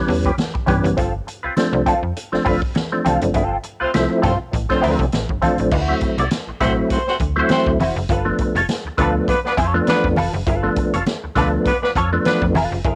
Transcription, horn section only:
3.82 3.90 A3 medium
3.82 3.90 C4 medium
3.82 3.90 F4 medium
3.82 3.90 C5 medium
4.24 4.34 A3 medium
4.24 4.35 C4 medium
4.24 4.35 F4 medium
4.24 4.35 C5 medium
4.71 5.07 A3 medium
4.71 5.07 C4 medium
4.71 5.07 F4 medium
4.71 5.07 C5 loud
6.61 6.72 A3 medium
6.61 6.72 C4 medium
6.61 6.72 F#4 medium
6.61 6.72 C5 medium
6.91 7.02 A3 medium
6.91 7.02 C4 medium
6.91 7.02 F#4 medium
6.91 7.02 C5 medium
7.07 7.15 A3 medium
7.07 7.15 C4 medium
7.07 7.15 F#4 loud
7.07 7.15 C5 loud
7.51 7.69 A3 loud
7.51 7.69 C4 loud
7.51 7.70 F#4 medium
7.51 7.69 C5 loud
8.98 9.09 F3 medium
8.98 9.09 B3 medium
8.98 9.09 D4 medium
8.98 9.09 B4 medium
9.28 9.38 F3 medium
9.28 9.39 B3 medium
9.28 9.39 D4 medium
9.28 9.39 B4 medium
9.45 9.54 F3 loud
9.45 9.53 B3 loud
9.45 9.54 D4 loud
9.45 9.53 B4 loud
9.88 10.07 F3 loud
9.88 10.07 B3 loud
9.88 10.07 D4 loud
9.88 10.07 B4 loud
11.36 11.47 F3 medium
11.36 11.47 B3 medium
11.36 11.47 D4 medium
11.36 11.47 B4 medium
11.66 11.76 F3 medium
11.66 11.76 B3 medium
11.66 11.76 D4 medium
11.66 11.76 B4 loud
11.82 11.91 F3 medium
11.82 11.91 B3 loud
11.82 11.90 D4 medium
11.82 11.91 B4 loud
12.25 12.44 F3 medium
12.25 12.44 B3 loud
12.25 12.44 D4 loud
12.25 12.44 B4 loud

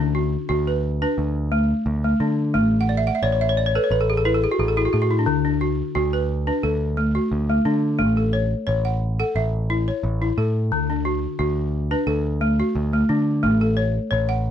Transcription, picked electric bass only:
0.00 0.35 D2 medium
0.50 1.04 D2 medium
1.18 1.72 D2 medium
1.86 2.13 D2 loud
2.20 2.56 D3 medium
2.55 3.09 A1 medium
3.22 3.77 A1 medium
3.90 4.45 A1 medium
4.59 4.86 A1 loud
4.94 5.27 A2 medium
5.27 5.81 D2 medium
5.96 6.50 D2 medium
6.63 7.17 D2 medium
7.31 7.58 D2 loud
7.65 8.01 D3 medium
7.99 8.53 A1 medium
8.68 9.21 A1 medium
9.35 9.89 A1 medium
10.03 10.30 A1 loud
10.38 10.72 A2 medium
10.72 11.26 D2 medium
11.39 11.93 D2 medium
12.07 12.61 D2 medium
12.75 13.02 D2 loud
13.09 13.45 D3 medium
13.44 13.98 A1 medium
14.12 14.51 A1 loud

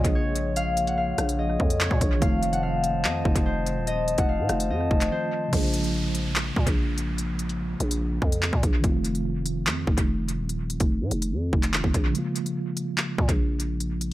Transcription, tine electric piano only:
0.00 2.15 C#3 medium
0.00 2.16 F3 medium
0.00 2.18 G#3 medium
0.00 2.19 A#3 medium
0.00 2.20 F4 medium
2.17 5.05 D#3 medium
2.17 5.06 F3 medium
2.22 5.07 A3 medium
2.22 5.08 C4 medium
2.26 5.09 F4 medium
5.09 5.52 D#3 medium
5.09 5.49 F3 soft
5.09 5.53 A3 soft
5.09 5.53 C4 medium
5.13 5.54 F4 medium
5.48 8.78 C#3 medium
5.48 8.79 F3 medium
5.52 8.80 G#3 medium
5.52 8.81 A#3 medium
5.57 8.82 F4 medium
8.80 11.67 D#3 medium
8.80 11.68 F3 medium
8.84 11.69 A3 medium
8.84 11.70 C4 medium
8.88 11.72 F4 medium
11.71 12.14 D#3 soft
11.71 12.11 F3 soft
11.71 12.15 A3 soft
11.71 12.15 C4 soft
11.75 12.16 F4 medium
12.10 14.13 C#3 medium
12.10 14.13 F3 medium
12.14 14.13 G#3 medium
12.14 14.13 A#3 medium
12.19 14.13 F4 medium

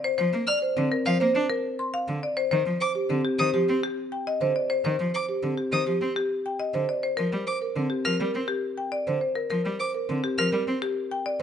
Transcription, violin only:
0.47 0.59 F6 medium
1.06 1.17 F5 medium
2.81 2.92 D6 medium
3.39 3.50 D#6 medium
5.14 5.25 D6 soft
5.72 5.83 D#6 medium
7.47 7.58 D6 soft
8.05 8.16 F6 medium
9.80 9.91 D6 soft
10.38 10.49 F6 medium

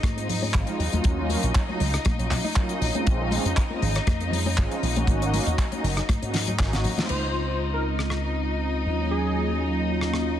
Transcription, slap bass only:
0.03 0.56 G#2 medium
0.55 0.63 G#1 medium
0.79 0.88 D#2 loud
0.93 1.00 D#2 medium
1.05 1.35 D#2 medium
1.43 1.50 A#1 loud
1.80 1.96 C#2 medium
2.06 2.14 A#1 medium
2.19 2.26 A#1 medium
2.31 2.39 A#1 medium
2.81 2.89 A#1 loud
3.07 3.37 A#1 loud
3.45 3.52 F2 loud
3.82 3.98 G#1 medium
4.07 4.60 F2 medium
4.58 4.66 G#1 medium
4.83 4.91 A#1 loud
4.96 5.03 A#1 medium
5.07 5.38 G#1 loud
5.47 5.54 D#2 loud
5.84 6.00 F#1 medium
6.09 6.17 G#2 medium
6.23 6.61 G#2 medium
6.60 6.86 G#1 medium
6.85 6.93 G#2 medium
7.10 8.84 C#2 medium
8.86 10.40 D#2 medium

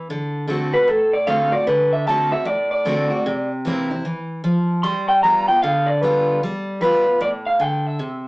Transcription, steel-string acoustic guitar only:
0.10 0.46 D3 medium
0.48 0.73 D3 medium
0.48 0.73 A3 medium
0.48 0.74 C4 medium
0.48 0.72 F#4 medium
0.73 0.89 C4 medium
0.73 0.88 F#4 medium
0.88 1.65 A2 medium
1.27 1.52 D3 medium
1.27 1.52 A3 medium
1.27 1.53 C4 medium
1.27 1.51 F#4 medium
1.52 1.68 C4 soft
1.52 1.67 F#4 medium
1.67 2.06 D3 loud
2.07 2.31 D3 medium
2.07 2.32 A3 loud
2.07 2.32 C4 loud
2.07 2.31 F#4 loud
2.32 2.47 C4 soft
2.32 2.46 F#4 medium
2.45 3.22 A2 medium
2.85 3.10 D3 loud
2.85 3.10 A3 loud
2.85 3.10 C4 loud
2.85 3.09 F#4 loud
3.10 3.25 C4 medium
3.10 3.24 F#4 medium
3.26 4.02 C3 loud
3.65 3.89 E3 loud
3.65 3.90 A#3 loud
3.65 3.90 C4 loud
3.65 3.89 E4 loud
3.91 4.05 C4 soft
3.91 4.04 E4 medium
4.05 4.43 E3 medium
4.44 4.82 F3 loud
4.84 5.22 G3 loud
5.24 5.48 G3 medium
5.24 5.48 B3 medium
5.24 5.47 F4 medium
5.48 5.63 B3 soft
5.48 5.62 F4 medium
5.63 6.39 D3 loud
6.03 6.40 G3 loud
6.03 6.41 B3 medium
6.03 6.42 F4 loud
6.43 6.80 G3 loud
6.81 7.05 G3 medium
6.81 7.06 B3 medium
6.81 7.05 F4 loud
7.06 7.21 B3 soft
7.06 7.20 F4 medium
7.21 7.59 A2 medium
7.60 7.98 D3 medium
7.99 8.28 C3 medium

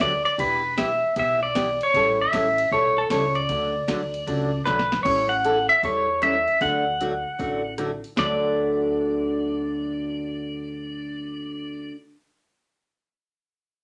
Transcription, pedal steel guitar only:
0.01 0.24 D5 loud
0.25 0.39 D5 medium
0.40 0.80 B4 medium
0.78 1.14 E5 medium
1.19 1.42 E5 loud
1.43 1.82 D5 loud
1.83 2.22 C#5 medium
2.22 2.75 E5 medium
2.73 2.98 C#5 medium
2.98 3.12 A4 medium
3.11 3.37 C#5 medium
3.35 4.62 D5 medium
4.65 5.03 B4 medium
5.03 5.30 C#5 medium
5.29 5.69 F#5 loud
5.69 5.83 E5 medium
5.85 6.24 C#5 medium
6.23 6.62 E5 loud
6.62 7.74 F#5 medium
8.19 11.92 D5 medium

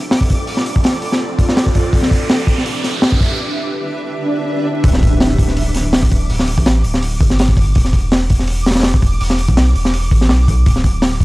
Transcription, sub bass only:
0.00 0.46 D1 medium
0.48 0.74 D1 loud
0.76 1.01 A1 medium
1.02 1.92 D1 medium
1.93 2.46 E1 loud
2.47 3.37 E1 medium
4.84 5.37 D1 loud
5.38 6.28 D1 medium
6.30 6.56 D1 loud
6.58 6.83 A1 medium
6.84 7.22 D1 medium
7.21 7.74 G1 loud
7.76 8.29 E1 loud
8.30 9.19 E1 medium
9.21 9.47 E1 loud
9.49 9.74 B1 medium
9.75 10.13 E1 medium
10.11 10.31 A1 loud
10.30 10.65 B1 loud
10.66 11.19 D1 loud
11.21 11.25 D1 medium

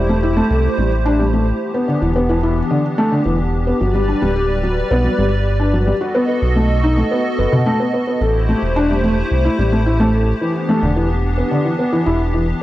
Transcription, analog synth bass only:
0.00 0.43 E1 loud
0.50 0.68 C2 loud
0.78 1.53 A1 medium
2.02 2.63 E1 loud
3.26 3.73 E1 loud
3.81 4.14 G1 loud
4.22 4.83 D1 loud
4.91 5.08 B1 loud
5.18 5.93 G1 medium
6.42 7.03 B1 loud
7.39 7.47 F#1 loud
8.21 8.54 A1 loud
8.62 9.23 E1 loud
9.31 9.49 C2 loud
9.59 10.33 A1 medium
10.83 11.43 E1 loud
12.06 12.54 E1 medium

